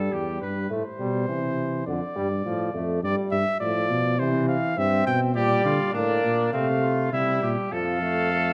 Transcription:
Already playing: tuba G2, trombone G3, trumpet A4
0.12 tuba E2, trumpet G4
0.41 tuba G2, trumpet B4
0.70 tuba A2, trombone A3, cornet C5
0.99 tuba B2, trombone G3
1.29 tuba C3, trombone E3
1.87 tuba F2, trombone D3, cornet D5
2.16 tuba G2, trombone G3
2.45 tuba A2, trombone F3
2.74 tuba F2, trombone A3
3.03 tuba G2, trombone G3, cornet D5
3.32 tuba G2, cornet E5
3.60 tuba A2, trombone F3, cornet D5
3.90 tuba B2
4.18 tuba C3, trombone E3, cornet C5
4.49 cornet F5
4.77 tuba G2, trombone C4, cornet E5
5.07 tuba B2, cornet G5
5.35 tuba A#2, trombone G3, trumpet G4, cornet D5
5.65 tuba D3, trumpet F4
5.93 tuba A2, trombone A#3, trumpet D4, cornet D5
6.24 tuba A#2
6.52 tuba C3, trombone A3, trumpet C4, cornet F5
6.82 trumpet F4
7.12 tuba C3, trombone G3, trumpet E4, cornet E5
7.42 tuba A#2, trumpet G4
7.72 tuba F2, trombone F3, trumpet A4, cornet F5
8.02 trombone A3
8.32 trombone A3

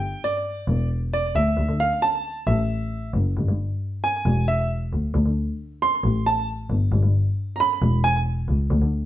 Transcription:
Already playing: double bass G2, grand piano G5
0.24 grand piano D5
0.67 double bass E1
1.13 grand piano D5
1.35 double bass D2, grand piano E5
1.57 double bass D2
1.68 double bass D3
1.80 grand piano F5
2.02 grand piano A5
2.47 double bass A1, grand piano E5
3.14 double bass F#1
3.37 double bass G1
3.48 double bass G2
4.04 grand piano G#5
4.25 double bass E1
4.48 grand piano E5
4.92 double bass D2
5.14 double bass D2
5.25 double bass D3
5.82 grand piano C6
6.03 double bass A1
6.26 grand piano A5
6.70 double bass G1
6.92 double bass G1
7.03 double bass G2
7.56 grand piano A#5
7.60 grand piano B5
7.82 double bass E1
8.04 grand piano G#5
8.48 double bass C#2
8.70 double bass D2
8.82 double bass D3

